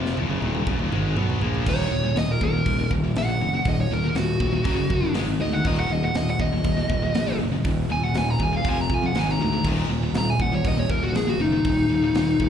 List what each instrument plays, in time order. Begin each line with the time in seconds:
Already playing: fingered electric bass F1, distorted electric guitar F2 C3 F3
0.06 snare
0.17 fingered electric bass D#1, distorted electric guitar D#2 A#2, high tom
0.29 fingered electric bass F#1, distorted electric guitar F#2 C#3
0.42 fingered electric bass D#1, distorted electric guitar D#2 A#2 D#3, high tom
0.55 mid tom
0.66 fingered electric bass F#1, distorted electric guitar F#2 C#3, kick
0.79 fingered electric bass D#1, distorted electric guitar D#2 A#2, mid tom
0.91 fingered electric bass G#1, distorted electric guitar G#2 D#3 G#3, mid tom
1.16 fingered electric bass B1, distorted electric guitar B2 F#3 B3, mid tom
1.30 floor tom
1.41 fingered electric bass A#1, distorted electric guitar A#2 F3 A#3, floor tom
1.55 floor tom
1.66 fingered electric bass D#1, distorted electric guitar D#2 A#2 D#3, lead electric guitar C#5, kick, crash
1.91 fingered electric bass D#1, distorted electric guitar D#2 A#2
2.03 distorted electric guitar D#2 A#2
2.15 fingered electric bass D#1, distorted electric guitar D#2 A#2, lead electric guitar D#5, snare, open hi-hat
2.32 lead electric guitar A#4
2.41 fingered electric bass D#1, distorted electric guitar D#2 A#2, lead electric guitar A#4, kick
2.53 distorted electric guitar D#2 A#2
2.66 fingered electric bass D#1, distorted electric guitar D#2 A#2, kick, open hi-hat
2.79 distorted electric guitar D#2 A#2
2.91 fingered electric bass D#1, distorted electric guitar D#2 A#2, kick
3.04 distorted electric guitar D#2 A#2
3.15 fingered electric bass A#1, distorted electric guitar D#2 A#2, lead electric guitar F#5, snare, open hi-hat
3.29 distorted electric guitar D#2 A#2
3.40 fingered electric bass F#1, distorted electric guitar D#2 A#2
3.54 distorted electric guitar D#2 A#2
3.65 fingered electric bass D#1, distorted electric guitar D#2 A#2, lead electric guitar D#5, kick, open hi-hat
3.81 lead electric guitar C#5
3.90 fingered electric bass D#1, distorted electric guitar D#2 A#2, lead electric guitar A#4
4.04 distorted electric guitar D#2 A#2
4.15 fingered electric bass D#1, distorted electric guitar D#2 A#2, lead electric guitar F#4, snare, open hi-hat
4.40 fingered electric bass D#1, distorted electric guitar D#2 A#2, kick
4.52 distorted electric guitar D#2 A#2
4.64 fingered electric bass F#1, distorted electric guitar F#2 C#3 F#3, kick, open hi-hat
4.77 distorted electric guitar F#2 C#3
4.90 fingered electric bass F#2, distorted electric guitar F#2 C#3, kick
5.02 distorted electric guitar F#2 C#3
5.14 fingered electric bass G#1, distorted electric guitar G#2 D#3 G#3, snare, open hi-hat
5.27 distorted electric guitar G#2 D#3
5.40 fingered electric bass D2, distorted electric guitar G#2 D#3, lead electric guitar D#5
5.52 distorted electric guitar G#2 D#3, lead electric guitar F#5
5.65 fingered electric bass D#1, distorted electric guitar D#2 A#2 D#3, lead electric guitar D#5, kick, open hi-hat
5.80 lead electric guitar F#5
5.90 fingered electric bass D#1, distorted electric guitar D#2 A#2, lead electric guitar D#5
6.03 distorted electric guitar D#2 A#2, lead electric guitar F#5
6.14 fingered electric bass D#1, distorted electric guitar D#2 A#2, lead electric guitar D#5, snare, open hi-hat
6.30 lead electric guitar F#5
6.39 fingered electric bass D#1, distorted electric guitar D#2 A#2, lead electric guitar D#5, kick
6.52 distorted electric guitar D#2 A#2
6.64 fingered electric bass D#1, distorted electric guitar D#2 A#2, kick, open hi-hat
6.77 distorted electric guitar D#2 A#2
6.89 fingered electric bass D#1, distorted electric guitar D#2 A#2, kick
7.02 distorted electric guitar D#2 A#2
7.14 fingered electric bass A#1, distorted electric guitar D#2 A#2, snare, open hi-hat
7.27 distorted electric guitar D#2 A#2
7.39 fingered electric bass F#1, distorted electric guitar D#2 A#2
7.52 distorted electric guitar D#2 A#2
7.65 fingered electric bass D#1, distorted electric guitar D#2 A#2, kick, open hi-hat
7.89 fingered electric bass D#1, distorted electric guitar D#2 A#2, lead electric guitar G#5
8.03 distorted electric guitar D#2 A#2, lead electric guitar F#5
8.14 fingered electric bass D#1, distorted electric guitar D#2 A#2, lead electric guitar G#5, snare, open hi-hat
8.30 lead electric guitar A#5
8.40 fingered electric bass D#1, distorted electric guitar D#2 A#2, lead electric guitar G#5, kick
8.53 distorted electric guitar D#2 A#2, lead electric guitar F5
8.65 fingered electric bass F1, distorted electric guitar F2 C3 F3, kick, open hi-hat
8.69 lead electric guitar G#5
8.78 distorted electric guitar F2 C3, lead electric guitar A#5
8.90 fingered electric bass F2, distorted electric guitar F2 C3, kick
8.94 lead electric guitar G#5
9.03 distorted electric guitar F2 C3, lead electric guitar F#5
9.14 fingered electric bass G#1, distorted electric guitar G#2 D#3 G#3, snare, open hi-hat
9.19 lead electric guitar G#5
9.28 distorted electric guitar G#2 D#3, lead electric guitar A#5
9.39 fingered electric bass D2, distorted electric guitar G#2 D#3, lead electric guitar A#5
9.53 distorted electric guitar G#2 D#3
9.64 fingered electric bass D#1, distorted electric guitar D#2 A#2 D#3, kick, crash
9.88 fingered electric bass D#1, distorted electric guitar D#2 A#2
10.03 distorted electric guitar D#2 A#2
10.13 fingered electric bass D#1, distorted electric guitar D#2 A#2, snare, open hi-hat
10.18 lead electric guitar A#5
10.30 lead electric guitar G#5
10.39 fingered electric bass D#1, distorted electric guitar D#2 A#2, lead electric guitar F#5, kick
10.52 distorted electric guitar D#2 A#2, lead electric guitar C#5
10.64 fingered electric bass D#1, distorted electric guitar D#2 A#2, lead electric guitar D#5, kick, open hi-hat
10.77 distorted electric guitar D#2 A#2, lead electric guitar C#5
10.89 fingered electric bass D#1, distorted electric guitar D#2 A#2, lead electric guitar A#4, kick
11.03 distorted electric guitar D#2 A#2, lead electric guitar F#4
11.13 fingered electric bass A#1, distorted electric guitar D#2 A#2, lead electric guitar G#4, snare, open hi-hat
11.27 distorted electric guitar D#2 A#2, lead electric guitar F#4
11.38 fingered electric bass F#1, distorted electric guitar D#2 A#2, lead electric guitar D#4
11.52 distorted electric guitar D#2 A#2
11.65 fingered electric bass D#1, distorted electric guitar D#2 A#2, kick, open hi-hat
11.89 fingered electric bass D#1, distorted electric guitar D#2 A#2
12.02 distorted electric guitar D#2 A#2
12.14 fingered electric bass D#1, distorted electric guitar D#2 A#2, snare, open hi-hat
12.40 fingered electric bass D#1, distorted electric guitar D#2 A#2, kick